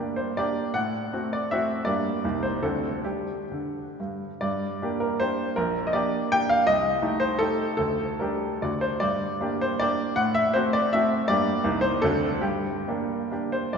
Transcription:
Already playing: G2 A#3 D4 D5
0.00 G4
0.16 C5
0.37 A#3 D4 G4 D5
0.74 A2 F#5
1.13 A3 C4 F#4
1.33 D5
1.51 A3 C4 F#4 E5
1.85 G2 A#3 D4 G4 D5
2.24 C2 A#3 D#4 G4
2.43 C5
2.63 D2 C4 D4 F#4 A4
3.04 G3 D4 G4
3.52 D3
4.00 G2
4.41 G2 D5
4.82 A#3 D4 G4
5.00 A#4
5.20 A#3 D4 G4 C5
5.56 A#1 A#4
5.87 D#5
5.93 A#3 D4 G4 D5
6.32 A#3 D4 G4 G5
6.49 F5
6.67 C2 D#5
7.02 A3 D#4 G4
7.20 C5
7.39 A3 D#4 G4 A4
7.77 D2 A4
8.19 G3 D4 G4 A#4
8.62 D2 A3 D4 F#4 D5
8.81 C5
9.00 G2 D5
9.40 A#3 D4 G4
9.61 C5
9.79 A#3 D4 G4 D5
10.16 A2 F#5
10.35 E5
10.54 A3 C4 F#4 C5
10.73 D5
10.93 A3 C4 F#4 E5
11.28 G2 A#3 D4 G4 D5
11.64 C2 A#3 D#4 G4
11.81 C5
12.02 D2 C4 D4 F#4 A4
12.41 G2 G4
12.88 A#3 D4 G4
13.31 A#3 D4 G4
13.52 C5
13.73 A#1 D5

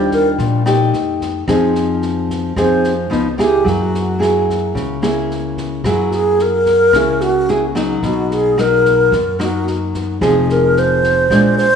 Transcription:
Already playing: D#2 D#3 G3 D4 F4 G4
0.11 A#4, kick, snare
0.38 A#1 A#2, kick, snare
0.66 A3 D#4 G4, cross-stick, snare
0.93 F2, snare
1.20 kick, snare
1.48 F2 F3 C4 D#4 G#4, kick, cross-stick, snare
1.75 snare
2.02 snare
2.29 kick, snare
2.56 F2 F3 C4 D#4 G#4 C5, kick, cross-stick, snare
2.84 snare
3.10 C#2 F3 B3 D#4, snare
3.38 A#3 E4 G4 G#4, kick, cross-stick, snare
3.65 F#2 F#3 F#4, kick, snare
3.94 snare
4.19 A#3 E4 G#4, cross-stick, snare
4.48 kick, snare
4.75 C#2 C#3, kick, snare
5.02 A#3 E4 G#4, cross-stick, snare
5.31 snare
5.57 kick, snare
5.84 F#2 F#3 A#3 E4 F#4 G#4, kick, cross-stick, snare
6.11 G#4, snare
6.39 A#4, snare
6.66 kick, snare
6.93 C#2 C#3 A#3 E4 G#4, kick, cross-stick, snare
7.21 F#4, snare
7.48 A#3 E4 G#4, snare
7.75 F#3 A#3 D#4, kick, cross-stick, snare
8.03 B1 B2 F#4, kick, snare
8.31 G#4, snare
8.58 F#3 A#3 D#4 A#4, cross-stick, snare
8.85 kick, snare
9.12 F#2, kick, snare
9.39 F#3 A#3 D#4 F#4, cross-stick, snare
9.67 snare
9.94 kick, snare
10.21 F1 F3 C4 D#4 G#4, kick, cross-stick, snare
10.49 A#4, snare
10.76 C5, snare
11.03 kick, snare
11.30 A#1 A#2 G#3 D4 F4, kick, cross-stick, snare
11.58 C5, snare

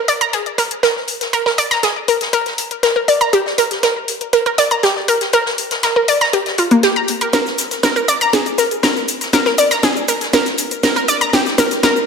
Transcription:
0.08 D5, closed hi-hat, open hi-hat
0.21 A#5, closed hi-hat
0.33 G#4, closed hi-hat
0.46 closed hi-hat
0.58 A#4, snare, closed hi-hat, open hi-hat
0.71 closed hi-hat
0.83 A#4, snare, closed hi-hat, open hi-hat
0.96 snare
1.07 closed hi-hat, open hi-hat
1.21 snare, closed hi-hat
1.33 A#4, closed hi-hat
1.46 A#4, snare
1.58 D5, closed hi-hat, open hi-hat
1.71 A#5, snare, closed hi-hat
1.83 G#4, snare, closed hi-hat
2.08 A#4, closed hi-hat, open hi-hat
2.21 snare, closed hi-hat
2.33 A#4, closed hi-hat
2.46 snare, closed hi-hat
2.58 closed hi-hat, open hi-hat
2.71 closed hi-hat
2.83 A#4, snare, closed hi-hat
2.96 A#4
3.08 D5, closed hi-hat, open hi-hat
3.21 A#5, closed hi-hat
3.33 G4, closed hi-hat
3.46 snare
3.58 A#4, snare, closed hi-hat, open hi-hat
3.71 snare, closed hi-hat
3.83 A#4, snare, closed hi-hat
4.08 closed hi-hat, open hi-hat
4.21 closed hi-hat
4.33 A#4, closed hi-hat
4.46 A#4, closed hi-hat
4.58 D5, snare, closed hi-hat, open hi-hat
4.71 A#5, closed hi-hat
4.83 G4, snare, closed hi-hat, open hi-hat
4.96 snare
5.08 A#4, closed hi-hat, open hi-hat
5.21 snare, closed hi-hat
5.33 A#4, closed hi-hat
5.45 snare
5.58 closed hi-hat, open hi-hat
5.70 snare, closed hi-hat
5.83 A#4, snare, closed hi-hat
5.96 A#4
6.08 D5, closed hi-hat, open hi-hat
6.21 A#5, snare, closed hi-hat
6.33 G4, closed hi-hat
6.46 snare, closed hi-hat
6.58 F4, closed hi-hat, open hi-hat
6.71 A#3, closed hi-hat
6.83 G4, snare, closed hi-hat
6.96 A#5
7.08 closed hi-hat, open hi-hat
7.21 A#4, closed hi-hat
7.33 A#4, snare, closed hi-hat, shaker
7.46 snare, shaker
7.58 snare, closed hi-hat, open hi-hat, shaker
7.71 snare, closed hi-hat, shaker
7.83 A#4, snare, closed hi-hat, shaker
7.96 A#4, shaker
8.08 D5, closed hi-hat, open hi-hat, shaker
8.21 A#5, closed hi-hat, shaker
8.33 G#4, snare, closed hi-hat, shaker
8.46 closed hi-hat, shaker
8.58 A#4, snare, closed hi-hat, open hi-hat, shaker
8.71 closed hi-hat, shaker
8.83 A#4, snare, closed hi-hat, open hi-hat, shaker
8.96 snare, shaker
9.08 closed hi-hat, open hi-hat, shaker
9.21 snare, closed hi-hat, shaker
9.33 A#4, snare, closed hi-hat, shaker
9.45 A#4, snare, shaker
9.58 D5, closed hi-hat, open hi-hat, shaker
9.70 A#5, snare, closed hi-hat, shaker
9.83 G#4, snare, closed hi-hat, shaker
9.96 shaker
10.08 A#4, closed hi-hat, open hi-hat, shaker
10.21 snare, closed hi-hat, shaker
10.33 A#4, snare, closed hi-hat, shaker
10.46 snare, closed hi-hat, shaker
10.57 closed hi-hat, open hi-hat, shaker
10.71 closed hi-hat, shaker
10.83 A#4, snare, closed hi-hat, shaker
10.96 A#4, shaker
11.08 D5, closed hi-hat, open hi-hat, shaker
11.21 A#5, closed hi-hat, shaker
11.33 G4, snare, closed hi-hat, shaker
11.46 snare, shaker
11.58 A#4, snare, closed hi-hat, open hi-hat, shaker
11.71 snare, closed hi-hat, shaker
11.83 A#4, snare, closed hi-hat, shaker
11.96 shaker

